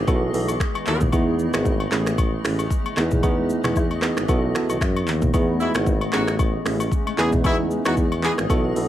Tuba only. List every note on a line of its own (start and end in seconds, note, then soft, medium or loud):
0.07 0.30 B1 loud
0.34 0.56 B1 loud
0.86 1.09 D#2 loud
1.13 1.48 E2 loud
1.53 1.86 G#1 loud
1.92 2.37 A1 loud
2.44 2.67 A1 medium
2.97 3.54 E2 loud
3.64 4.09 E2 loud
4.17 4.27 G#1 medium
4.29 4.51 B1 loud
4.69 4.82 B1 medium
4.81 5.09 F#2 medium
5.08 5.30 D#2 loud
5.34 5.69 E2 loud
5.75 6.07 G#1 loud
6.13 6.58 A1 loud
6.65 6.88 A1 medium
7.18 7.75 E2 loud
7.85 8.30 E2 medium
8.38 8.48 G#1 medium
8.50 8.72 B1 loud
8.76 8.88 B1 loud